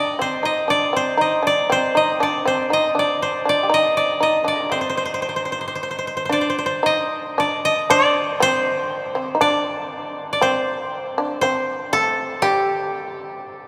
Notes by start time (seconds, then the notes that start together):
Already playing: D4 D5
0.19 C4 C5
0.43 D#4 D#5
0.68 D4 D5
0.93 C4 C5
1.18 D#4 D#5
1.43 D4
1.47 D5
1.70 C4 C5
1.95 D#4 D#5
2.20 D4 D5
2.45 C4 C5
2.70 D#4 D#5
2.95 D4
2.99 D5
3.22 C5
3.45 D4 D5
3.63 G4
3.70 D#4
3.74 D#5
3.97 D5
4.21 D#4 D#5
4.44 D4 D5
4.53 C3 D3
4.60 D#3
4.66 G3 A3
4.71 C4 C5
4.81 C5
4.89 C5
4.97 C5
5.05 C5
5.14 C5
5.22 C5
5.29 C5
5.36 C5
5.45 C5
5.52 C5
5.61 C5
5.68 C5
5.75 C5
5.83 C5
5.91 C5
5.99 C5
6.07 C5
6.17 C5
6.25 C5
6.29 D4 C5 D5
6.41 C5
6.50 C5
6.58 C5
6.66 C5
6.83 D#4 D#5
7.38 D4 D5
7.65 D#5
7.90 D4 D5
8.40 C4 C5
9.15 C4
9.35 D#4
9.41 D4 D5
10.33 D5
10.41 C4 C5
11.18 D4
11.41 C4 C5
11.93 A3 A4
12.42 G3 G4